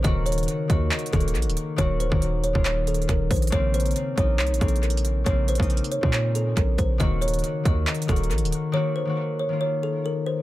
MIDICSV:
0, 0, Header, 1, 5, 480
1, 0, Start_track
1, 0, Tempo, 434783
1, 51, Time_signature, 4, 2, 24, 8
1, 11506, End_track
2, 0, Start_track
2, 0, Title_t, "Kalimba"
2, 0, Program_c, 0, 108
2, 46, Note_on_c, 0, 75, 104
2, 268, Note_off_c, 0, 75, 0
2, 284, Note_on_c, 0, 73, 85
2, 739, Note_off_c, 0, 73, 0
2, 773, Note_on_c, 0, 75, 80
2, 992, Note_off_c, 0, 75, 0
2, 1013, Note_on_c, 0, 75, 88
2, 1232, Note_off_c, 0, 75, 0
2, 1243, Note_on_c, 0, 69, 87
2, 1466, Note_off_c, 0, 69, 0
2, 1486, Note_on_c, 0, 70, 78
2, 1708, Note_off_c, 0, 70, 0
2, 1967, Note_on_c, 0, 73, 103
2, 2188, Note_off_c, 0, 73, 0
2, 2208, Note_on_c, 0, 72, 80
2, 2661, Note_off_c, 0, 72, 0
2, 2690, Note_on_c, 0, 73, 78
2, 2910, Note_off_c, 0, 73, 0
2, 2927, Note_on_c, 0, 73, 85
2, 3148, Note_off_c, 0, 73, 0
2, 3176, Note_on_c, 0, 69, 85
2, 3393, Note_off_c, 0, 69, 0
2, 3424, Note_on_c, 0, 70, 82
2, 3637, Note_off_c, 0, 70, 0
2, 3653, Note_on_c, 0, 72, 77
2, 3872, Note_off_c, 0, 72, 0
2, 3895, Note_on_c, 0, 73, 106
2, 4113, Note_off_c, 0, 73, 0
2, 4131, Note_on_c, 0, 72, 90
2, 4582, Note_off_c, 0, 72, 0
2, 4609, Note_on_c, 0, 73, 84
2, 4829, Note_off_c, 0, 73, 0
2, 4843, Note_on_c, 0, 73, 92
2, 5066, Note_off_c, 0, 73, 0
2, 5092, Note_on_c, 0, 69, 81
2, 5311, Note_off_c, 0, 69, 0
2, 5332, Note_on_c, 0, 70, 71
2, 5551, Note_off_c, 0, 70, 0
2, 5806, Note_on_c, 0, 73, 91
2, 6028, Note_off_c, 0, 73, 0
2, 6057, Note_on_c, 0, 72, 86
2, 6505, Note_off_c, 0, 72, 0
2, 6530, Note_on_c, 0, 73, 75
2, 6750, Note_off_c, 0, 73, 0
2, 6775, Note_on_c, 0, 73, 83
2, 6993, Note_off_c, 0, 73, 0
2, 7012, Note_on_c, 0, 69, 85
2, 7231, Note_off_c, 0, 69, 0
2, 7251, Note_on_c, 0, 70, 83
2, 7470, Note_off_c, 0, 70, 0
2, 7487, Note_on_c, 0, 72, 78
2, 7708, Note_off_c, 0, 72, 0
2, 7726, Note_on_c, 0, 75, 105
2, 7948, Note_off_c, 0, 75, 0
2, 7965, Note_on_c, 0, 73, 81
2, 8419, Note_off_c, 0, 73, 0
2, 8454, Note_on_c, 0, 75, 82
2, 8672, Note_off_c, 0, 75, 0
2, 8693, Note_on_c, 0, 75, 89
2, 8911, Note_off_c, 0, 75, 0
2, 8923, Note_on_c, 0, 69, 86
2, 9146, Note_off_c, 0, 69, 0
2, 9166, Note_on_c, 0, 70, 78
2, 9388, Note_off_c, 0, 70, 0
2, 9645, Note_on_c, 0, 73, 103
2, 9867, Note_off_c, 0, 73, 0
2, 9889, Note_on_c, 0, 72, 83
2, 10341, Note_off_c, 0, 72, 0
2, 10371, Note_on_c, 0, 73, 78
2, 10591, Note_off_c, 0, 73, 0
2, 10606, Note_on_c, 0, 73, 89
2, 10828, Note_off_c, 0, 73, 0
2, 10855, Note_on_c, 0, 69, 86
2, 11073, Note_off_c, 0, 69, 0
2, 11102, Note_on_c, 0, 70, 83
2, 11317, Note_off_c, 0, 70, 0
2, 11332, Note_on_c, 0, 72, 78
2, 11506, Note_off_c, 0, 72, 0
2, 11506, End_track
3, 0, Start_track
3, 0, Title_t, "Harp"
3, 0, Program_c, 1, 46
3, 0, Note_on_c, 1, 60, 82
3, 28, Note_on_c, 1, 51, 99
3, 51, Note_on_c, 1, 58, 84
3, 73, Note_on_c, 1, 66, 111
3, 734, Note_off_c, 1, 51, 0
3, 748, Note_on_c, 1, 51, 66
3, 766, Note_off_c, 1, 58, 0
3, 771, Note_on_c, 1, 58, 68
3, 789, Note_off_c, 1, 66, 0
3, 793, Note_on_c, 1, 66, 90
3, 1123, Note_off_c, 1, 58, 0
3, 1134, Note_off_c, 1, 66, 0
3, 1214, Note_off_c, 1, 51, 0
3, 1227, Note_on_c, 1, 51, 74
3, 1250, Note_on_c, 1, 58, 75
3, 1272, Note_on_c, 1, 66, 84
3, 1934, Note_off_c, 1, 51, 0
3, 1947, Note_on_c, 1, 51, 104
3, 1965, Note_off_c, 1, 58, 0
3, 1970, Note_on_c, 1, 58, 89
3, 1988, Note_off_c, 1, 66, 0
3, 1993, Note_on_c, 1, 66, 105
3, 2230, Note_off_c, 1, 58, 0
3, 2242, Note_off_c, 1, 66, 0
3, 2302, Note_off_c, 1, 51, 0
3, 2312, Note_off_c, 1, 60, 0
3, 2315, Note_on_c, 1, 51, 76
3, 2337, Note_on_c, 1, 58, 74
3, 2361, Note_on_c, 1, 66, 78
3, 2677, Note_off_c, 1, 58, 0
3, 2688, Note_off_c, 1, 66, 0
3, 2781, Note_off_c, 1, 51, 0
3, 2795, Note_on_c, 1, 51, 73
3, 2816, Note_on_c, 1, 58, 59
3, 2840, Note_on_c, 1, 65, 75
3, 3867, Note_on_c, 1, 49, 93
3, 3885, Note_off_c, 1, 58, 0
3, 3890, Note_on_c, 1, 58, 92
3, 3912, Note_on_c, 1, 60, 109
3, 3946, Note_off_c, 1, 51, 0
3, 4574, Note_off_c, 1, 49, 0
3, 4587, Note_on_c, 1, 49, 69
3, 4605, Note_off_c, 1, 58, 0
3, 4610, Note_on_c, 1, 58, 65
3, 4633, Note_on_c, 1, 63, 90
3, 4653, Note_off_c, 1, 60, 0
3, 4962, Note_off_c, 1, 58, 0
3, 4974, Note_off_c, 1, 63, 0
3, 5055, Note_off_c, 1, 49, 0
3, 5068, Note_on_c, 1, 49, 74
3, 5090, Note_on_c, 1, 58, 72
3, 5113, Note_on_c, 1, 60, 82
3, 5625, Note_off_c, 1, 65, 0
3, 5775, Note_off_c, 1, 49, 0
3, 5788, Note_on_c, 1, 49, 102
3, 5806, Note_off_c, 1, 58, 0
3, 5810, Note_on_c, 1, 58, 83
3, 5829, Note_off_c, 1, 60, 0
3, 5834, Note_on_c, 1, 60, 102
3, 6071, Note_off_c, 1, 58, 0
3, 6083, Note_off_c, 1, 60, 0
3, 6142, Note_off_c, 1, 49, 0
3, 6155, Note_on_c, 1, 49, 69
3, 6177, Note_on_c, 1, 58, 74
3, 6199, Note_on_c, 1, 63, 80
3, 6517, Note_off_c, 1, 58, 0
3, 6528, Note_off_c, 1, 63, 0
3, 6622, Note_off_c, 1, 49, 0
3, 6635, Note_on_c, 1, 49, 73
3, 6657, Note_on_c, 1, 58, 68
3, 6680, Note_on_c, 1, 60, 85
3, 7707, Note_on_c, 1, 51, 102
3, 7726, Note_off_c, 1, 58, 0
3, 7730, Note_on_c, 1, 58, 85
3, 7753, Note_on_c, 1, 66, 114
3, 7786, Note_off_c, 1, 49, 0
3, 8416, Note_off_c, 1, 51, 0
3, 8429, Note_on_c, 1, 51, 69
3, 8447, Note_off_c, 1, 58, 0
3, 8451, Note_on_c, 1, 58, 69
3, 8469, Note_off_c, 1, 66, 0
3, 8474, Note_on_c, 1, 66, 86
3, 8803, Note_off_c, 1, 58, 0
3, 8814, Note_off_c, 1, 66, 0
3, 8895, Note_off_c, 1, 51, 0
3, 8908, Note_on_c, 1, 51, 79
3, 8930, Note_on_c, 1, 58, 74
3, 8954, Note_on_c, 1, 66, 85
3, 9614, Note_off_c, 1, 51, 0
3, 9628, Note_on_c, 1, 51, 105
3, 9646, Note_off_c, 1, 58, 0
3, 9651, Note_on_c, 1, 58, 91
3, 9668, Note_off_c, 1, 66, 0
3, 9673, Note_on_c, 1, 66, 106
3, 9911, Note_off_c, 1, 58, 0
3, 9922, Note_off_c, 1, 66, 0
3, 9982, Note_off_c, 1, 51, 0
3, 9992, Note_off_c, 1, 60, 0
3, 9995, Note_on_c, 1, 51, 75
3, 10018, Note_on_c, 1, 58, 74
3, 10040, Note_on_c, 1, 66, 78
3, 10357, Note_off_c, 1, 58, 0
3, 10368, Note_off_c, 1, 66, 0
3, 10462, Note_off_c, 1, 51, 0
3, 10475, Note_on_c, 1, 51, 74
3, 10497, Note_on_c, 1, 58, 61
3, 10520, Note_on_c, 1, 65, 70
3, 11506, Note_off_c, 1, 51, 0
3, 11506, Note_off_c, 1, 58, 0
3, 11506, Note_off_c, 1, 65, 0
3, 11506, End_track
4, 0, Start_track
4, 0, Title_t, "808-style bass"
4, 0, Program_c, 2, 38
4, 50, Note_on_c, 2, 27, 109
4, 511, Note_off_c, 2, 27, 0
4, 769, Note_on_c, 2, 39, 109
4, 1000, Note_off_c, 2, 39, 0
4, 1250, Note_on_c, 2, 27, 106
4, 1489, Note_on_c, 2, 34, 99
4, 1506, Note_off_c, 2, 27, 0
4, 1615, Note_on_c, 2, 27, 99
4, 1632, Note_off_c, 2, 34, 0
4, 1724, Note_off_c, 2, 27, 0
4, 1970, Note_on_c, 2, 27, 103
4, 2323, Note_off_c, 2, 27, 0
4, 2338, Note_on_c, 2, 27, 100
4, 2799, Note_off_c, 2, 27, 0
4, 2816, Note_on_c, 2, 27, 98
4, 3386, Note_off_c, 2, 27, 0
4, 3411, Note_on_c, 2, 27, 104
4, 3641, Note_off_c, 2, 27, 0
4, 3650, Note_on_c, 2, 34, 103
4, 3881, Note_off_c, 2, 34, 0
4, 3890, Note_on_c, 2, 34, 108
4, 4351, Note_off_c, 2, 34, 0
4, 4610, Note_on_c, 2, 34, 113
4, 4850, Note_on_c, 2, 36, 98
4, 4867, Note_off_c, 2, 34, 0
4, 4977, Note_on_c, 2, 34, 103
4, 4993, Note_off_c, 2, 36, 0
4, 5085, Note_off_c, 2, 34, 0
4, 5092, Note_on_c, 2, 34, 101
4, 5783, Note_off_c, 2, 34, 0
4, 5811, Note_on_c, 2, 34, 109
4, 6164, Note_off_c, 2, 34, 0
4, 6178, Note_on_c, 2, 34, 100
4, 6409, Note_off_c, 2, 34, 0
4, 6658, Note_on_c, 2, 46, 96
4, 7227, Note_off_c, 2, 46, 0
4, 7251, Note_on_c, 2, 34, 102
4, 7481, Note_off_c, 2, 34, 0
4, 7490, Note_on_c, 2, 34, 106
4, 7721, Note_off_c, 2, 34, 0
4, 7731, Note_on_c, 2, 27, 106
4, 8192, Note_off_c, 2, 27, 0
4, 8450, Note_on_c, 2, 39, 111
4, 8681, Note_off_c, 2, 39, 0
4, 8931, Note_on_c, 2, 27, 106
4, 9170, Note_on_c, 2, 34, 99
4, 9187, Note_off_c, 2, 27, 0
4, 9297, Note_on_c, 2, 27, 97
4, 9314, Note_off_c, 2, 34, 0
4, 9405, Note_off_c, 2, 27, 0
4, 11506, End_track
5, 0, Start_track
5, 0, Title_t, "Drums"
5, 50, Note_on_c, 9, 36, 121
5, 50, Note_on_c, 9, 42, 85
5, 160, Note_off_c, 9, 42, 0
5, 161, Note_off_c, 9, 36, 0
5, 290, Note_on_c, 9, 42, 86
5, 354, Note_off_c, 9, 42, 0
5, 354, Note_on_c, 9, 42, 78
5, 417, Note_off_c, 9, 42, 0
5, 417, Note_on_c, 9, 42, 63
5, 474, Note_off_c, 9, 42, 0
5, 474, Note_on_c, 9, 42, 49
5, 530, Note_off_c, 9, 42, 0
5, 530, Note_on_c, 9, 42, 82
5, 641, Note_off_c, 9, 42, 0
5, 769, Note_on_c, 9, 36, 98
5, 770, Note_on_c, 9, 42, 63
5, 880, Note_off_c, 9, 36, 0
5, 880, Note_off_c, 9, 42, 0
5, 1010, Note_on_c, 9, 39, 118
5, 1010, Note_on_c, 9, 42, 48
5, 1090, Note_off_c, 9, 42, 0
5, 1090, Note_on_c, 9, 42, 63
5, 1120, Note_off_c, 9, 39, 0
5, 1170, Note_off_c, 9, 42, 0
5, 1170, Note_on_c, 9, 42, 77
5, 1250, Note_off_c, 9, 42, 0
5, 1250, Note_on_c, 9, 36, 92
5, 1250, Note_on_c, 9, 42, 57
5, 1330, Note_off_c, 9, 42, 0
5, 1330, Note_on_c, 9, 42, 57
5, 1361, Note_off_c, 9, 36, 0
5, 1410, Note_off_c, 9, 42, 0
5, 1410, Note_on_c, 9, 42, 62
5, 1490, Note_off_c, 9, 42, 0
5, 1490, Note_on_c, 9, 42, 49
5, 1570, Note_off_c, 9, 42, 0
5, 1570, Note_on_c, 9, 42, 65
5, 1651, Note_off_c, 9, 42, 0
5, 1651, Note_on_c, 9, 42, 80
5, 1731, Note_off_c, 9, 42, 0
5, 1731, Note_on_c, 9, 42, 92
5, 1841, Note_off_c, 9, 42, 0
5, 1970, Note_on_c, 9, 36, 114
5, 1970, Note_on_c, 9, 42, 83
5, 2080, Note_off_c, 9, 36, 0
5, 2081, Note_off_c, 9, 42, 0
5, 2211, Note_on_c, 9, 42, 87
5, 2321, Note_off_c, 9, 42, 0
5, 2337, Note_on_c, 9, 36, 101
5, 2448, Note_off_c, 9, 36, 0
5, 2451, Note_on_c, 9, 42, 86
5, 2561, Note_off_c, 9, 42, 0
5, 2690, Note_on_c, 9, 42, 63
5, 2800, Note_off_c, 9, 42, 0
5, 2817, Note_on_c, 9, 36, 88
5, 2927, Note_off_c, 9, 36, 0
5, 2929, Note_on_c, 9, 39, 121
5, 2929, Note_on_c, 9, 42, 73
5, 3040, Note_off_c, 9, 39, 0
5, 3040, Note_off_c, 9, 42, 0
5, 3170, Note_on_c, 9, 42, 69
5, 3251, Note_off_c, 9, 42, 0
5, 3251, Note_on_c, 9, 42, 56
5, 3331, Note_off_c, 9, 42, 0
5, 3331, Note_on_c, 9, 42, 42
5, 3410, Note_off_c, 9, 42, 0
5, 3410, Note_on_c, 9, 42, 76
5, 3411, Note_on_c, 9, 36, 104
5, 3521, Note_off_c, 9, 36, 0
5, 3521, Note_off_c, 9, 42, 0
5, 3650, Note_on_c, 9, 36, 98
5, 3651, Note_on_c, 9, 42, 51
5, 3651, Note_on_c, 9, 46, 90
5, 3714, Note_off_c, 9, 42, 0
5, 3714, Note_on_c, 9, 42, 62
5, 3760, Note_off_c, 9, 36, 0
5, 3761, Note_off_c, 9, 46, 0
5, 3778, Note_off_c, 9, 42, 0
5, 3778, Note_on_c, 9, 42, 75
5, 3834, Note_off_c, 9, 42, 0
5, 3834, Note_on_c, 9, 42, 87
5, 3890, Note_off_c, 9, 42, 0
5, 3890, Note_on_c, 9, 36, 113
5, 3890, Note_on_c, 9, 42, 81
5, 4000, Note_off_c, 9, 42, 0
5, 4001, Note_off_c, 9, 36, 0
5, 4129, Note_on_c, 9, 42, 87
5, 4193, Note_off_c, 9, 42, 0
5, 4193, Note_on_c, 9, 42, 77
5, 4257, Note_off_c, 9, 42, 0
5, 4257, Note_on_c, 9, 42, 61
5, 4314, Note_off_c, 9, 42, 0
5, 4314, Note_on_c, 9, 42, 48
5, 4370, Note_off_c, 9, 42, 0
5, 4370, Note_on_c, 9, 42, 83
5, 4481, Note_off_c, 9, 42, 0
5, 4610, Note_on_c, 9, 36, 96
5, 4610, Note_on_c, 9, 42, 64
5, 4720, Note_off_c, 9, 36, 0
5, 4721, Note_off_c, 9, 42, 0
5, 4850, Note_on_c, 9, 39, 122
5, 4850, Note_on_c, 9, 42, 47
5, 4931, Note_off_c, 9, 42, 0
5, 4931, Note_on_c, 9, 42, 63
5, 4960, Note_off_c, 9, 39, 0
5, 5011, Note_off_c, 9, 42, 0
5, 5011, Note_on_c, 9, 42, 78
5, 5091, Note_off_c, 9, 42, 0
5, 5091, Note_on_c, 9, 36, 89
5, 5091, Note_on_c, 9, 42, 58
5, 5171, Note_off_c, 9, 42, 0
5, 5171, Note_on_c, 9, 42, 60
5, 5202, Note_off_c, 9, 36, 0
5, 5251, Note_off_c, 9, 42, 0
5, 5251, Note_on_c, 9, 42, 57
5, 5331, Note_off_c, 9, 42, 0
5, 5331, Note_on_c, 9, 42, 47
5, 5411, Note_off_c, 9, 42, 0
5, 5411, Note_on_c, 9, 42, 66
5, 5491, Note_off_c, 9, 42, 0
5, 5491, Note_on_c, 9, 42, 78
5, 5572, Note_off_c, 9, 42, 0
5, 5572, Note_on_c, 9, 42, 90
5, 5682, Note_off_c, 9, 42, 0
5, 5811, Note_on_c, 9, 36, 114
5, 5811, Note_on_c, 9, 42, 83
5, 5921, Note_off_c, 9, 36, 0
5, 5921, Note_off_c, 9, 42, 0
5, 6050, Note_on_c, 9, 42, 74
5, 6131, Note_off_c, 9, 42, 0
5, 6131, Note_on_c, 9, 42, 74
5, 6178, Note_on_c, 9, 36, 98
5, 6211, Note_off_c, 9, 42, 0
5, 6211, Note_on_c, 9, 42, 69
5, 6289, Note_off_c, 9, 36, 0
5, 6291, Note_off_c, 9, 42, 0
5, 6291, Note_on_c, 9, 42, 70
5, 6372, Note_off_c, 9, 42, 0
5, 6372, Note_on_c, 9, 42, 69
5, 6451, Note_off_c, 9, 42, 0
5, 6451, Note_on_c, 9, 42, 74
5, 6531, Note_off_c, 9, 42, 0
5, 6531, Note_on_c, 9, 42, 61
5, 6641, Note_off_c, 9, 42, 0
5, 6658, Note_on_c, 9, 36, 88
5, 6768, Note_off_c, 9, 36, 0
5, 6770, Note_on_c, 9, 39, 122
5, 6770, Note_on_c, 9, 42, 79
5, 6880, Note_off_c, 9, 39, 0
5, 6881, Note_off_c, 9, 42, 0
5, 7011, Note_on_c, 9, 42, 70
5, 7122, Note_off_c, 9, 42, 0
5, 7251, Note_on_c, 9, 36, 109
5, 7251, Note_on_c, 9, 42, 77
5, 7361, Note_off_c, 9, 42, 0
5, 7362, Note_off_c, 9, 36, 0
5, 7491, Note_on_c, 9, 36, 100
5, 7492, Note_on_c, 9, 42, 82
5, 7601, Note_off_c, 9, 36, 0
5, 7602, Note_off_c, 9, 42, 0
5, 7731, Note_on_c, 9, 36, 114
5, 7732, Note_on_c, 9, 42, 81
5, 7842, Note_off_c, 9, 36, 0
5, 7842, Note_off_c, 9, 42, 0
5, 7971, Note_on_c, 9, 42, 86
5, 8035, Note_off_c, 9, 42, 0
5, 8035, Note_on_c, 9, 42, 74
5, 8099, Note_off_c, 9, 42, 0
5, 8099, Note_on_c, 9, 42, 64
5, 8155, Note_off_c, 9, 42, 0
5, 8155, Note_on_c, 9, 42, 48
5, 8211, Note_off_c, 9, 42, 0
5, 8211, Note_on_c, 9, 42, 86
5, 8322, Note_off_c, 9, 42, 0
5, 8450, Note_on_c, 9, 36, 103
5, 8451, Note_on_c, 9, 42, 64
5, 8561, Note_off_c, 9, 36, 0
5, 8562, Note_off_c, 9, 42, 0
5, 8691, Note_on_c, 9, 39, 115
5, 8691, Note_on_c, 9, 42, 46
5, 8771, Note_off_c, 9, 42, 0
5, 8771, Note_on_c, 9, 42, 62
5, 8801, Note_off_c, 9, 39, 0
5, 8852, Note_off_c, 9, 42, 0
5, 8852, Note_on_c, 9, 42, 76
5, 8931, Note_on_c, 9, 36, 95
5, 8932, Note_off_c, 9, 42, 0
5, 8932, Note_on_c, 9, 42, 56
5, 9012, Note_off_c, 9, 42, 0
5, 9012, Note_on_c, 9, 42, 58
5, 9042, Note_off_c, 9, 36, 0
5, 9091, Note_off_c, 9, 42, 0
5, 9091, Note_on_c, 9, 42, 60
5, 9171, Note_off_c, 9, 42, 0
5, 9171, Note_on_c, 9, 42, 47
5, 9251, Note_off_c, 9, 42, 0
5, 9251, Note_on_c, 9, 42, 63
5, 9331, Note_off_c, 9, 42, 0
5, 9331, Note_on_c, 9, 42, 77
5, 9411, Note_off_c, 9, 42, 0
5, 9411, Note_on_c, 9, 42, 87
5, 9521, Note_off_c, 9, 42, 0
5, 11506, End_track
0, 0, End_of_file